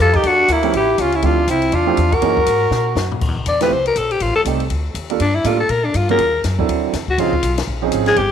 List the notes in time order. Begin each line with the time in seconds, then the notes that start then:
0.00 F2 F4 A4
0.13 D#4 G4, kick, ride
0.23 E2 D4 F#4, kick, ride
0.48 D2 A#3 E4, kick, hi-hat pedal, ride
0.63 F3 A3 C#4 E4 G4, ride
0.73 A1 E4 G4, kick, ride
0.98 C#2 C#4 F4, kick, hi-hat pedal, ride
1.12 C#4 E4, ride
1.22 D2 F3 A3 C4 D4 E4 F4 G4, kick, ride
1.47 C2 C4 E4, kick, hi-hat pedal, ride
1.62 ride
1.72 E2 D4 F4, kick, ride
1.86 F3 A3 C4 E4 G4
1.97 E2, hi-hat pedal, ride
2.12 F#4 A#4, kick, ride
2.21 F#2 E3 A#3 C#4 D#4 G#4, kick, ride
2.37 kick
2.46 G#2, kick, hi-hat pedal, ride
2.71 A#2, snare
2.95 F#2, snare, hi-hat pedal
3.12 floor tom
3.21 F2, kick, crash
3.28 E2
3.36 C2
3.46 E2 D5, kick, hi-hat pedal, ride
3.61 F3 A3 C4 E4 G4 B4, snare, ride
3.71 C2 C5, kick
3.86 A#4, ride
3.96 A#1 A4, kick, hi-hat pedal, ride
4.11 G4, ride
4.20 A1 F4, kick, ride
4.28 G1
4.36 D#1 A4
4.45 C2 G3 A3 C4 D#4 G4, kick, hi-hat pedal, ride
4.60 ride
4.70 D2, kick, ride
4.94 D#2, kick, hi-hat pedal, ride
5.10 G3 A#3 D4 F4 A4, ride
5.20 G2 D4, kick, ride
5.35 E4
5.44 A2 G3 A#3 D4 F4 A4, kick, hi-hat pedal, ride
5.60 A4
5.69 A#2 A#4, kick, ride
5.85 D4
5.94 G2 F4, kick, hi-hat pedal, ride
6.09 F#3 A#3 C#4 F4 G#4 A#4, ride
6.19 D#2, kick, ride
6.44 F#2, kick, snare, hi-hat pedal, ride
6.58 F#3 C4 D4 E4 A4, kick
6.69 D2, kick, ride
6.93 E2, kick, snare, hi-hat pedal, ride
7.08 F#4, kick
7.18 C#2 F3 C4 C#4 D#4 F4 G#4, kick, ride
7.33 kick
7.43 B1, hi-hat pedal, ride
7.58 snare, ride
7.67 A#1, kick
7.82 F3 C4 C#4 D#4 G#4
7.92 G#1, kick, hi-hat pedal, ride
8.06 G#4, snare, ride
8.16 G1 G4, kick, ride